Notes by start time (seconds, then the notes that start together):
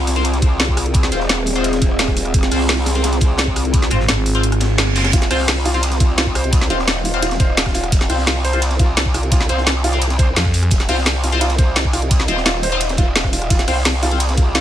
Already playing: C2 C4 F4 G#4
0.07 snare, open hi-hat, ride
0.16 C4 F4 C5, closed hi-hat
0.24 closed hi-hat, ride
0.34 snare, closed hi-hat
0.42 kick, closed hi-hat, ride
0.60 snare, closed hi-hat, ride
0.68 kick
0.77 cross-stick, open hi-hat, ride
0.86 closed hi-hat
0.94 kick, closed hi-hat, ride
1.03 snare, closed hi-hat
1.12 D#1 C4 F4 C5, closed hi-hat, ride
1.20 snare
1.29 snare, closed hi-hat, ride
1.46 open hi-hat, ride
1.56 C4 F4 C5, closed hi-hat
1.64 closed hi-hat, ride
1.73 snare, closed hi-hat
1.82 kick, closed hi-hat, ride
1.99 snare, closed hi-hat, ride
2.08 kick, cross-stick, snare
2.17 open hi-hat, ride
2.25 cross-stick, closed hi-hat
2.34 F1, kick, closed hi-hat, ride
2.43 snare, closed hi-hat
2.51 C2 C4 F4 C5, cross-stick, closed hi-hat, open hi-hat
2.61 snare
2.69 snare, closed hi-hat, ride
2.86 snare, open hi-hat, ride
2.95 C4 F4 C5, closed hi-hat
3.04 snare, closed hi-hat, ride
3.13 snare, closed hi-hat
3.21 kick, closed hi-hat, ride
3.38 snare, closed hi-hat, ride
3.47 kick
3.56 cross-stick, open hi-hat, ride
3.65 closed hi-hat
3.74 kick, closed hi-hat, ride
3.82 snare, closed hi-hat
3.90 G#1 C4 F4 C5, cross-stick, closed hi-hat, ride
4.00 snare
4.08 G#1, snare, closed hi-hat, ride
4.26 snare, open hi-hat, ride
4.35 C4 F4 C5, closed hi-hat
4.43 closed hi-hat, reverse cymbal
4.52 cross-stick, closed hi-hat
4.60 snare, closed hi-hat, ride
4.78 G1, snare, closed hi-hat, ride
4.87 cross-stick
4.95 C4 F4 C5, snare, open hi-hat, ride, zap
5.04 cross-stick, snare, closed hi-hat, ride
5.13 F1 F4 D#5, kick, closed hi-hat, ride, ride bell
5.22 snare, closed hi-hat
5.30 C2 C4 F4 C5, cross-stick, closed hi-hat, open hi-hat
5.40 snare
5.48 snare, closed hi-hat, ride, ride bell
5.65 F4, snare, open hi-hat, ride
5.74 C4 F4 C5, closed hi-hat
5.83 closed hi-hat, ride, ride bell
5.92 snare, closed hi-hat
6.00 F4, kick, closed hi-hat, ride
6.18 F4, snare, closed hi-hat, ride, ride bell
6.26 kick
6.35 C5, cross-stick, open hi-hat, ride
6.44 closed hi-hat
6.53 kick, closed hi-hat, ride, ride bell
6.61 snare, closed hi-hat
6.70 D#1 C4 F4 C5, closed hi-hat, ride
6.79 snare
6.87 snare, closed hi-hat, ride, ride bell
7.05 F4, open hi-hat, ride
7.14 C4 F4 C5, closed hi-hat
7.22 F4, closed hi-hat, ride, ride bell
7.31 snare, closed hi-hat
7.40 C5, kick, closed hi-hat, ride
7.57 snare, closed hi-hat, ride, ride bell
7.66 kick, cross-stick, snare
7.74 F4, open hi-hat, ride
7.84 cross-stick, closed hi-hat
7.92 F1 G#5, kick, closed hi-hat, ride, ride bell
8.00 snare, closed hi-hat
8.10 C2 C4 F4 C5, cross-stick, closed hi-hat, open hi-hat
8.18 snare
8.26 F4, snare, closed hi-hat, ride, ride bell
8.44 C5, snare, open hi-hat, ride
8.53 C4 F4 C5, closed hi-hat
8.62 closed hi-hat, ride, ride bell
8.71 snare, closed hi-hat
8.79 F4, kick, closed hi-hat, ride
8.97 snare, closed hi-hat, ride, ride bell
9.06 kick
9.14 F4, cross-stick, open hi-hat, ride
9.23 closed hi-hat
9.31 F4, kick, closed hi-hat, ride, ride bell
9.39 snare, closed hi-hat
9.49 C2 C4 F4 C5, closed hi-hat, ride
9.58 snare
9.66 snare, closed hi-hat, ride, ride bell
9.84 F4, open hi-hat, ride
9.93 C4 F4 C5, closed hi-hat
10.02 closed hi-hat, ride, ride bell
10.10 snare, closed hi-hat
10.19 C5, kick, closed hi-hat, ride
10.36 F2 F4, snare, closed hi-hat, ride, ride bell
10.45 kick, cross-stick, snare
10.54 open hi-hat, ride
10.63 cross-stick, closed hi-hat
10.71 F1 D#5, kick, closed hi-hat, ride, ride bell
10.80 snare, closed hi-hat
10.89 C2 C4 F4 C5, cross-stick, closed hi-hat, open hi-hat
10.98 snare
11.05 snare, closed hi-hat, ride, ride bell
11.23 F4, snare, open hi-hat, ride
11.32 C4 F4 C5, closed hi-hat
11.41 F4, closed hi-hat, ride, ride bell
11.50 snare, closed hi-hat
11.58 C5, kick, closed hi-hat, ride
11.76 snare, closed hi-hat, ride, ride bell
11.85 kick
11.93 F4, cross-stick, open hi-hat, ride
12.02 closed hi-hat
12.11 kick, closed hi-hat, ride, ride bell
12.19 snare, closed hi-hat
12.28 D#1 C4 F4 C5, closed hi-hat, ride
12.37 snare
12.45 F4, snare, closed hi-hat, ride, ride bell
12.63 C5, open hi-hat, ride
12.72 C4 F4 C5, closed hi-hat
12.80 closed hi-hat, ride, ride bell
12.89 snare, closed hi-hat
12.97 F4, kick, closed hi-hat, ride
13.16 snare, closed hi-hat, ride, ride bell
13.24 kick, cross-stick, snare
13.33 F4, open hi-hat, ride
13.42 cross-stick, closed hi-hat
13.50 F1 F4 G#4, kick, closed hi-hat, ride, ride bell
13.59 snare, closed hi-hat
13.68 C2 C4 F4 C5, cross-stick, closed hi-hat, open hi-hat
13.77 snare
13.85 snare, closed hi-hat, ride, ride bell
14.02 F4, snare, open hi-hat, ride
14.11 C4 F4 C5, closed hi-hat
14.20 closed hi-hat, ride, ride bell
14.29 snare, closed hi-hat
14.38 F4, kick, closed hi-hat, ride
14.55 F4, snare, closed hi-hat, ride, ride bell